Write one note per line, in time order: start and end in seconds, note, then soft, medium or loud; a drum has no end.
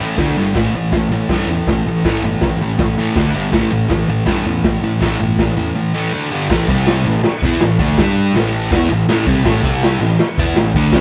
0.00 0.16 A2 medium
0.00 0.12 A2 medium
0.00 0.17 E3 medium
0.00 0.17 A3 loud
0.17 0.30 D2 medium
0.17 0.35 D3 medium
0.17 0.36 A3 loud
0.17 0.36 D4 loud
0.17 kick loud
0.17 snare loud
0.17 open hi-hat medium
0.37 0.55 G1 medium
0.37 0.54 G2 medium
0.37 0.54 D3 loud
0.37 0.55 G3 loud
0.37 snare medium
0.55 0.67 A1 medium
0.55 0.72 A2 medium
0.55 0.73 E3 medium
0.55 0.73 A3 loud
0.55 kick loud
0.55 snare loud
0.55 open hi-hat medium
0.55 splash medium
0.74 0.87 A1 medium
0.74 0.91 A2 medium
0.74 0.91 E3 medium
0.92 1.05 A1 medium
0.92 1.09 A2 medium
0.92 1.09 E3 medium
0.92 kick loud
0.92 snare loud
0.92 open hi-hat medium
1.09 1.22 A1 medium
1.09 1.28 A2 medium
1.09 1.28 E3 medium
1.29 1.42 G2 medium
1.29 1.48 A2 medium
1.29 1.48 E3 loud
1.29 1.49 A3 medium
1.29 kick loud
1.29 snare loud
1.29 open hi-hat medium
1.47 1.60 E2 medium
1.47 1.66 A2 medium
1.47 1.66 E3 medium
1.67 1.79 A1 medium
1.67 1.85 A2 medium
1.67 1.85 E3 medium
1.67 kick loud
1.67 snare loud
1.67 open hi-hat medium
1.86 1.98 A1 medium
1.86 2.03 A2 medium
1.86 2.03 E3 medium
2.04 2.17 A1 medium
2.04 2.22 A2 medium
2.04 2.22 E3 medium
2.04 2.23 A3 medium
2.04 kick loud
2.04 snare loud
2.04 open hi-hat medium
2.22 2.34 G1 medium
2.22 2.40 A2 medium
2.22 2.40 E3 medium
2.41 2.54 A1 medium
2.41 2.59 A2 medium
2.41 2.59 E3 medium
2.41 kick loud
2.41 snare loud
2.41 open hi-hat medium
2.58 2.71 A1 medium
2.58 2.77 A2 medium
2.62 2.78 E3 medium
2.79 2.91 A1 medium
2.79 2.95 A2 medium
2.79 2.96 E3 medium
2.79 kick loud
2.79 snare loud
2.79 open hi-hat medium
2.97 3.09 A2 medium
2.97 3.15 A2 medium
2.97 3.16 E3 medium
2.97 3.16 A3 medium
3.15 3.28 D2 medium
3.15 3.34 D3 medium
3.15 3.35 A3 loud
3.15 3.35 D4 loud
3.15 kick loud
3.15 snare loud
3.15 open hi-hat medium
3.33 3.46 G1 medium
3.33 3.52 G2 medium
3.33 3.52 D3 loud
3.33 3.52 G3 loud
3.52 3.66 A1 medium
3.52 3.70 A2 medium
3.52 3.70 E3 loud
3.52 3.71 A3 medium
3.52 kick loud
3.52 snare loud
3.52 open hi-hat soft
3.71 3.84 A1 medium
3.71 3.87 A2 medium
3.71 3.89 E3 medium
3.89 4.02 A1 medium
3.89 4.06 A2 medium
3.89 4.07 E3 medium
3.89 kick loud
3.89 snare loud
3.89 open hi-hat medium
4.08 4.21 A1 medium
4.08 4.25 A2 medium
4.08 4.25 E3 medium
4.26 4.39 G2 medium
4.26 4.44 A2 medium
4.26 4.44 E3 medium
4.26 4.45 A3 loud
4.26 kick loud
4.26 snare loud
4.26 open hi-hat medium
4.45 4.58 E2 medium
4.45 4.63 A2 medium
4.45 4.63 E3 medium
4.64 4.77 A1 medium
4.64 4.81 A2 medium
4.64 4.82 E3 medium
4.64 kick loud
4.64 snare loud
4.64 open hi-hat medium
4.81 4.94 A1 medium
4.81 4.99 A2 medium
4.81 4.99 E3 medium
5.00 5.14 A1 medium
5.00 5.18 A2 medium
5.00 5.18 E3 medium
5.00 5.19 A3 medium
5.00 kick loud
5.00 snare loud
5.00 open hi-hat medium
5.19 5.32 G1 medium
5.19 5.37 A2 medium
5.19 5.37 E3 medium
5.38 5.51 A1 medium
5.38 5.55 A2 medium
5.38 5.55 E3 loud
5.38 kick loud
5.38 snare loud
5.38 open hi-hat medium
5.57 5.70 E2 medium
5.57 5.74 A2 medium
5.57 5.74 E3 medium
5.75 5.92 A2 medium
5.75 5.93 E3 medium
5.94 6.12 A2 medium
5.94 6.12 E3 medium
5.94 6.12 A3 loud
6.13 6.30 D3 loud
6.13 6.31 A3 medium
6.13 6.31 D4 loud
6.30 6.49 G2 medium
6.30 6.49 D3 loud
6.30 6.49 G3 loud
6.49 6.67 A1 medium
6.49 6.67 A2 loud
6.49 6.68 E3 loud
6.49 6.69 A3 loud
6.49 kick loud
6.49 snare loud
6.49 crash loud
6.68 7.03 C2 medium
6.68 7.05 C3 medium
6.68 7.05 G3 medium
6.68 7.05 C4 loud
6.68 kick loud
6.86 snare loud
6.86 open hi-hat medium
7.04 7.22 A1 medium
7.04 7.21 A2 medium
7.04 7.21 E3 medium
7.04 crash loud
7.24 snare loud
7.42 7.60 E2 loud
7.42 7.61 E3 loud
7.42 7.61 B3 loud
7.42 7.62 E4 medium
7.42 kick loud
7.60 7.78 A1 medium
7.60 7.76 A2 medium
7.60 7.76 E3 medium
7.60 snare loud
7.60 open hi-hat medium
7.79 7.97 D2 loud
7.79 7.97 D3 medium
7.79 7.98 A3 medium
7.79 7.98 D4 loud
7.79 kick loud
7.97 8.32 G2 loud
7.97 8.36 G3 loud
7.97 8.36 D4 loud
7.97 kick loud
7.97 snare loud
7.97 open hi-hat medium
8.02 8.36 G4 loud
8.33 8.68 A1 medium
8.33 8.72 A2 loud
8.33 8.71 E3 loud
8.33 snare loud
8.33 open hi-hat medium
8.38 8.73 A3 loud
8.71 8.89 E2 medium
8.71 8.89 E3 medium
8.71 8.90 B3 medium
8.71 8.91 E4 loud
8.71 kick loud
8.71 snare loud
8.71 open hi-hat medium
8.89 9.07 A1 medium
8.89 9.05 A2 medium
8.89 9.05 E3 medium
9.08 9.26 A1 loud
9.08 9.27 A2 loud
9.08 9.27 E3 loud
9.08 9.27 A3 loud
9.08 snare loud
9.08 open hi-hat medium
9.27 9.44 C2 loud
9.27 9.44 C3 medium
9.27 9.45 G3 medium
9.27 9.45 C4 loud
9.27 kick loud
9.44 9.63 A1 medium
9.44 9.62 A2 medium
9.44 9.63 E3 loud
9.44 9.63 A3 loud
9.44 kick loud
9.44 snare loud
9.44 open hi-hat medium
9.62 9.98 C2 medium
9.62 9.99 C3 loud
9.62 10.00 G3 loud
9.62 10.00 C4 loud
9.62 kick loud
9.83 snare loud
9.83 open hi-hat medium
9.99 10.17 A1 medium
9.99 10.16 A2 medium
9.99 10.16 E3 medium
9.99 crash loud
10.19 snare loud
10.38 10.54 E2 loud
10.38 10.56 E3 medium
10.38 10.56 B3 medium
10.38 10.56 E4 loud
10.38 kick loud
10.54 10.72 A1 medium
10.54 10.72 A2 medium
10.54 snare loud
10.54 open hi-hat medium
10.59 10.72 E3 medium
10.74 10.91 D2 loud
10.74 10.93 D3 medium
10.74 10.93 A3 loud
10.74 10.94 D4 loud
10.74 kick loud
10.92 11.01 C2 loud
10.92 11.01 C3 medium
10.92 11.01 G3 loud
10.92 11.01 C4 loud
10.92 kick loud
10.92 snare loud
10.92 open hi-hat medium